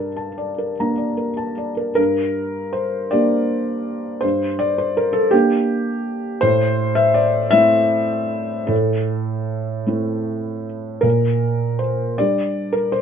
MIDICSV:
0, 0, Header, 1, 2, 480
1, 0, Start_track
1, 0, Tempo, 803213
1, 1179, Time_signature, 6, 3, 24, 8
1, 1179, Tempo, 744417
1, 5019, Tempo, 778210
1, 6939, Tempo, 757576
1, 8191, End_track
2, 0, Start_track
2, 0, Title_t, "Felt piano"
2, 0, Program_c, 0, 0
2, 0, Control_c, 0, 64, 127
2, 0, Note_on_c, 0, 43, 54
2, 0, Note_on_c, 0, 70, 45
2, 0, Note_on_c, 0, 74, 40
2, 0, Note_on_c, 0, 81, 48
2, 99, Note_off_c, 0, 81, 0
2, 99, Note_on_c, 0, 81, 44
2, 171, Note_off_c, 0, 70, 0
2, 226, Note_off_c, 0, 74, 0
2, 226, Note_on_c, 0, 74, 46
2, 293, Note_off_c, 0, 81, 0
2, 349, Note_on_c, 0, 70, 43
2, 416, Note_off_c, 0, 74, 0
2, 436, Note_off_c, 0, 43, 0
2, 478, Note_on_c, 0, 58, 42
2, 478, Note_on_c, 0, 82, 51
2, 479, Note_on_c, 0, 62, 41
2, 537, Note_off_c, 0, 70, 0
2, 584, Note_on_c, 0, 74, 42
2, 661, Note_off_c, 0, 82, 0
2, 700, Note_on_c, 0, 70, 44
2, 775, Note_off_c, 0, 74, 0
2, 819, Note_on_c, 0, 81, 49
2, 894, Note_off_c, 0, 70, 0
2, 942, Note_on_c, 0, 74, 43
2, 1014, Note_off_c, 0, 81, 0
2, 1058, Note_on_c, 0, 70, 51
2, 1132, Note_off_c, 0, 74, 0
2, 1157, Note_off_c, 0, 70, 0
2, 1164, Note_off_c, 0, 58, 0
2, 1164, Note_off_c, 0, 62, 0
2, 1166, Note_on_c, 0, 70, 86
2, 1173, Note_on_c, 0, 43, 59
2, 1190, Control_c, 0, 64, 0
2, 1292, Control_c, 0, 64, 127
2, 1663, Note_off_c, 0, 70, 0
2, 1665, Note_on_c, 0, 72, 66
2, 1886, Note_off_c, 0, 43, 0
2, 1909, Note_off_c, 0, 72, 0
2, 1911, Note_on_c, 0, 74, 86
2, 1924, Note_on_c, 0, 67, 48
2, 1926, Note_on_c, 0, 58, 48
2, 1927, Note_on_c, 0, 62, 50
2, 2613, Note_off_c, 0, 67, 0
2, 2614, Note_off_c, 0, 58, 0
2, 2615, Note_off_c, 0, 62, 0
2, 2619, Note_on_c, 0, 72, 83
2, 2632, Note_on_c, 0, 43, 57
2, 2633, Note_off_c, 0, 74, 0
2, 2644, Control_c, 0, 64, 0
2, 2745, Control_c, 0, 64, 127
2, 2862, Note_off_c, 0, 72, 0
2, 2865, Note_on_c, 0, 74, 87
2, 2984, Note_off_c, 0, 74, 0
2, 2991, Note_on_c, 0, 72, 74
2, 3105, Note_off_c, 0, 72, 0
2, 3112, Note_on_c, 0, 70, 77
2, 3213, Note_on_c, 0, 69, 84
2, 3224, Note_off_c, 0, 70, 0
2, 3315, Note_off_c, 0, 43, 0
2, 3330, Note_on_c, 0, 67, 90
2, 3333, Note_off_c, 0, 69, 0
2, 3341, Note_on_c, 0, 58, 55
2, 3343, Note_on_c, 0, 62, 51
2, 3346, Control_c, 0, 64, 0
2, 3443, Control_c, 0, 64, 127
2, 4027, Note_off_c, 0, 58, 0
2, 4028, Note_off_c, 0, 62, 0
2, 4039, Note_on_c, 0, 72, 105
2, 4047, Note_off_c, 0, 67, 0
2, 4051, Note_on_c, 0, 45, 65
2, 4062, Control_c, 0, 64, 0
2, 4155, Control_c, 0, 64, 127
2, 4390, Note_on_c, 0, 76, 98
2, 4406, Note_off_c, 0, 72, 0
2, 4513, Note_on_c, 0, 74, 86
2, 4522, Note_off_c, 0, 76, 0
2, 4747, Note_on_c, 0, 76, 115
2, 4755, Note_off_c, 0, 45, 0
2, 4757, Note_on_c, 0, 57, 49
2, 4759, Note_on_c, 0, 60, 53
2, 4760, Note_on_c, 0, 64, 62
2, 4766, Note_off_c, 0, 74, 0
2, 5463, Note_off_c, 0, 57, 0
2, 5464, Note_off_c, 0, 60, 0
2, 5465, Note_off_c, 0, 64, 0
2, 5476, Note_on_c, 0, 69, 74
2, 5483, Note_off_c, 0, 76, 0
2, 5485, Note_on_c, 0, 45, 61
2, 5509, Control_c, 0, 64, 0
2, 5626, Control_c, 0, 64, 127
2, 6190, Note_off_c, 0, 45, 0
2, 6214, Note_on_c, 0, 57, 41
2, 6219, Note_on_c, 0, 60, 44
2, 6220, Note_on_c, 0, 64, 44
2, 6691, Note_off_c, 0, 69, 0
2, 6912, Note_off_c, 0, 57, 0
2, 6915, Note_off_c, 0, 60, 0
2, 6916, Note_off_c, 0, 64, 0
2, 6919, Note_on_c, 0, 70, 74
2, 6932, Note_on_c, 0, 46, 56
2, 6951, Control_c, 0, 64, 0
2, 7059, Control_c, 0, 64, 127
2, 7413, Note_on_c, 0, 72, 65
2, 7414, Note_off_c, 0, 70, 0
2, 7639, Note_off_c, 0, 46, 0
2, 7659, Note_off_c, 0, 72, 0
2, 7661, Note_on_c, 0, 74, 89
2, 7665, Note_on_c, 0, 55, 44
2, 7667, Note_on_c, 0, 62, 46
2, 7672, Note_on_c, 0, 67, 44
2, 7674, Control_c, 0, 64, 0
2, 7778, Control_c, 0, 64, 127
2, 8006, Note_on_c, 0, 70, 78
2, 8020, Note_off_c, 0, 74, 0
2, 8130, Note_on_c, 0, 72, 84
2, 8132, Note_off_c, 0, 70, 0
2, 8191, Note_off_c, 0, 55, 0
2, 8191, Note_off_c, 0, 62, 0
2, 8191, Note_off_c, 0, 67, 0
2, 8191, Note_off_c, 0, 72, 0
2, 8191, End_track
0, 0, End_of_file